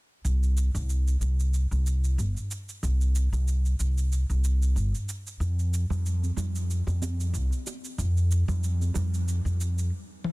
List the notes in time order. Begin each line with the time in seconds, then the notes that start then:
0.25 C2, shaker
0.43 shaker
0.57 shaker
0.75 C2, shaker
0.90 shaker
1.08 shaker
1.21 C2, shaker
1.40 shaker
1.54 shaker
1.71 C2, shaker
1.87 shaker
2.04 shaker
2.18 G1, shaker
2.37 shaker
2.51 shaker
2.69 shaker
2.83 C2, shaker
3.01 shaker
3.16 shaker
3.33 C2, shaker
3.48 shaker
3.66 shaker
3.79 C2, shaker
3.98 shaker
4.12 shaker
4.30 C2, shaker
4.44 shaker
4.62 shaker
4.76 G1, shaker
4.95 shaker
5.09 shaker
5.27 shaker
5.40 F2, shaker
5.59 shaker
5.74 shaker
5.90 F2, low conga, shaker
6.06 shaker
6.23 high conga, shaker
6.37 F2, high bongo, low conga, shaker
6.56 shaker
6.71 shaker
6.87 F2, high bongo, shaker
7.02 high bongo, high conga, shaker
7.20 shaker
7.34 C2, shaker
7.53 shaker
7.67 high bongo, shaker
7.85 shaker
7.98 F2, shaker
8.17 shaker
8.32 shaker
8.48 F2, low conga, shaker
8.64 shaker
8.81 high conga, shaker
8.94 F2, high bongo, low conga, shaker
9.14 shaker
9.28 shaker
9.45 F2, shaker
9.61 shaker
9.78 shaker
10.24 high tom